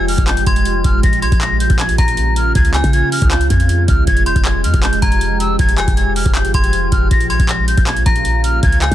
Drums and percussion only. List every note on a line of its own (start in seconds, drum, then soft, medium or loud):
0.08 open hi-hat medium
0.18 kick loud
0.18 closed hi-hat medium
0.27 clap loud
0.27 closed hi-hat medium
0.37 closed hi-hat medium
0.47 kick medium
0.47 closed hi-hat medium
0.56 closed hi-hat medium
0.65 closed hi-hat medium
0.84 kick loud
0.84 closed hi-hat medium
1.03 kick loud
1.03 closed hi-hat medium
1.13 closed hi-hat medium
1.22 closed hi-hat medium
1.32 kick medium
1.32 closed hi-hat medium
1.41 clap loud
1.41 closed hi-hat medium
1.60 closed hi-hat medium
1.70 kick loud
1.70 closed hi-hat medium
1.79 clap loud
1.79 closed hi-hat medium
1.89 closed hi-hat medium
1.98 kick medium
1.98 closed hi-hat medium
2.08 closed hi-hat medium
2.17 closed hi-hat medium
2.36 closed hi-hat medium
2.55 kick loud
2.55 closed hi-hat medium
2.65 closed hi-hat medium
2.74 clap medium
2.74 closed hi-hat medium
2.84 kick medium
2.84 closed hi-hat medium
2.93 closed hi-hat medium
3.12 open hi-hat medium
3.22 kick loud
3.22 closed hi-hat medium
3.31 clap loud
3.31 closed hi-hat medium
3.41 closed hi-hat medium
3.50 kick medium
3.50 closed hi-hat medium
3.60 closed hi-hat medium
3.69 closed hi-hat medium
3.88 kick loud
3.88 closed hi-hat medium
4.07 kick loud
4.07 closed hi-hat medium
4.17 closed hi-hat medium
4.26 closed hi-hat medium
4.36 kick medium
4.36 closed hi-hat medium
4.45 clap loud
4.45 closed hi-hat medium
4.64 closed hi-hat medium
4.74 kick loud
4.74 closed hi-hat medium
4.83 clap loud
4.83 closed hi-hat medium
4.93 closed hi-hat medium
5.02 kick medium
5.02 closed hi-hat medium
5.12 closed hi-hat medium
5.21 closed hi-hat medium
5.40 closed hi-hat medium
5.59 kick loud
5.59 closed hi-hat medium
5.69 closed hi-hat medium
5.78 clap medium
5.78 closed hi-hat medium
5.88 kick medium
5.88 closed hi-hat medium
5.97 closed hi-hat medium
6.16 open hi-hat medium
6.26 kick loud
6.26 closed hi-hat medium
6.35 clap loud
6.35 closed hi-hat medium
6.45 closed hi-hat medium
6.54 kick medium
6.54 closed hi-hat medium
6.64 closed hi-hat medium
6.73 closed hi-hat medium
6.92 kick loud
6.92 closed hi-hat medium
7.11 kick loud
7.11 closed hi-hat medium
7.21 closed hi-hat medium
7.30 closed hi-hat medium
7.39 kick medium
7.39 closed hi-hat medium
7.49 clap loud
7.49 closed hi-hat medium
7.68 closed hi-hat medium
7.77 kick loud
7.77 closed hi-hat medium
7.87 clap loud
7.87 closed hi-hat medium
7.97 closed hi-hat medium
8.06 kick medium
8.06 closed hi-hat medium
8.16 closed hi-hat medium
8.25 closed hi-hat medium
8.44 closed hi-hat medium
8.63 kick loud
8.63 closed hi-hat medium
8.72 closed hi-hat medium
8.82 clap medium
8.82 closed hi-hat medium
8.91 kick medium
8.91 closed hi-hat medium